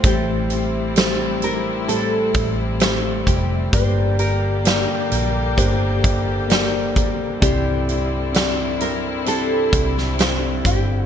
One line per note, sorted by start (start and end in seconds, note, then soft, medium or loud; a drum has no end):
0.00 0.50 A2 medium
0.00 0.91 A3 medium
0.00 3.69 C4 medium
0.00 kick loud
0.00 closed hi-hat medium
0.04 2.31 A1 medium
0.04 1.39 A2 medium
0.04 3.70 C3 medium
0.04 0.50 E3 medium
0.04 1.39 E3 medium
0.04 0.50 G3 medium
0.04 11.06 G3 medium
0.04 0.50 C4 medium
0.04 0.50 E4 medium
0.04 3.70 E4 medium
0.04 0.92 G4 medium
0.04 1.44 G4 medium
0.04 0.49 A4 medium
0.04 0.92 C5 loud
0.50 0.94 G3 soft
0.50 0.95 C4 medium
0.50 0.96 E4 medium
0.50 0.96 A4 medium
0.50 closed hi-hat medium
0.95 1.42 G3 medium
0.95 1.84 G3 medium
0.95 1.42 C4 medium
0.95 1.42 E4 medium
0.95 1.84 G4 medium
0.95 1.43 A4 medium
0.95 1.85 C5 medium
0.95 snare loud
0.95 closed hi-hat medium
1.42 1.89 G3 soft
1.42 1.89 C4 soft
1.42 1.89 E4 soft
1.42 1.86 A#4 medium
1.42 closed hi-hat medium
1.88 2.81 A2 medium
1.88 2.81 E3 medium
1.88 2.80 G3 medium
1.88 2.76 A3 medium
1.88 2.80 C4 medium
1.88 2.81 E4 medium
1.88 2.76 G4 medium
1.88 3.27 A4 medium
1.88 2.77 A4 medium
1.88 2.82 A4 medium
1.88 closed hi-hat medium
2.34 3.23 A1 medium
2.34 kick loud
2.34 closed hi-hat medium
2.80 3.72 G3 medium
2.80 3.68 A3 medium
2.80 3.73 C4 medium
2.80 3.74 E4 medium
2.80 3.69 G4 medium
2.80 3.74 A4 medium
2.80 3.69 C5 medium
2.80 snare loud
2.80 closed hi-hat medium
3.27 3.70 F1 medium
3.27 3.73 G4 medium
3.27 kick medium
3.27 closed hi-hat medium
3.73 4.85 G1 medium
3.73 5.08 G2 medium
3.73 5.08 D3 medium
3.73 11.06 D3 medium
3.73 4.19 G3 medium
3.73 4.61 A#3 medium
3.73 7.39 A#3 medium
3.73 4.19 D4 medium
3.73 4.61 G4 medium
3.73 4.20 G4 medium
3.73 7.39 G4 medium
3.73 4.18 A#4 medium
3.73 4.19 C5 loud
3.73 4.61 D5 loud
3.73 kick loud
3.73 closed hi-hat medium
4.19 4.65 D4 soft
4.19 4.66 G4 soft
4.19 4.65 A#4 medium
4.19 6.92 A#4 medium
4.19 closed hi-hat medium
4.65 5.12 G3 medium
4.65 5.53 A#3 medium
4.65 5.12 D4 medium
4.65 5.53 G4 medium
4.65 5.12 G4 medium
4.65 5.10 A#4 medium
4.65 5.53 D5 medium
4.65 snare loud
4.65 closed hi-hat medium
5.11 5.55 A#1 medium
5.11 5.58 D4 soft
5.11 5.58 G4 soft
5.11 5.58 A#4 medium
5.11 closed hi-hat medium
5.57 7.38 G1 medium
5.57 6.50 G3 medium
5.57 6.45 A#3 medium
5.57 6.51 D4 medium
5.57 6.45 G4 medium
5.57 6.52 G4 medium
5.57 6.51 A#4 loud
5.57 6.46 C5 medium
5.57 kick medium
5.57 closed hi-hat medium
6.04 kick medium
6.04 closed hi-hat medium
6.48 7.43 G3 medium
6.48 7.37 A#3 medium
6.48 7.43 D4 medium
6.48 7.37 G4 medium
6.48 7.43 G4 medium
6.48 7.38 D5 medium
6.48 snare loud
6.48 closed hi-hat medium
6.53 7.44 A#4 medium
6.96 kick medium
6.96 closed hi-hat medium
7.41 9.69 C2 medium
7.41 8.76 G2 medium
7.41 7.88 C3 medium
7.41 7.89 E3 medium
7.41 7.89 G3 medium
7.41 8.29 C4 medium
7.41 11.06 C4 medium
7.41 7.89 D4 medium
7.41 8.30 E4 medium
7.41 7.88 E4 medium
7.41 11.06 E4 medium
7.41 8.81 G4 medium
7.41 7.87 C5 medium
7.41 8.30 D5 medium
7.41 kick loud
7.41 closed hi-hat medium
7.88 8.33 G3 soft
7.88 8.34 D4 soft
7.88 8.35 E4 soft
7.88 8.35 C5 soft
7.88 closed hi-hat medium
8.33 9.26 G3 medium
8.33 9.21 C4 medium
8.33 9.26 D4 medium
8.33 9.22 E4 medium
8.33 9.26 E4 medium
8.33 9.23 D5 medium
8.33 snare loud
8.33 closed hi-hat medium
8.37 9.28 C5 medium
8.80 9.28 A#4 medium
8.80 closed hi-hat medium
9.26 10.19 C3 medium
9.26 10.19 E3 medium
9.26 10.16 G3 medium
9.26 10.14 C4 medium
9.26 10.18 D4 medium
9.26 10.15 E4 medium
9.26 10.18 E4 medium
9.26 10.15 G4 medium
9.26 10.66 A4 loud
9.26 10.20 C5 medium
9.26 closed hi-hat medium
9.73 10.61 C2 medium
9.73 kick loud
9.73 closed hi-hat medium
9.98 snare soft
10.18 11.06 G3 medium
10.18 11.06 C4 medium
10.18 11.06 D4 medium
10.18 11.06 E4 medium
10.18 11.06 C5 medium
10.18 snare loud
10.18 closed hi-hat medium
10.65 11.06 G1 medium
10.65 11.06 G4 medium
10.65 kick medium
10.65 closed hi-hat medium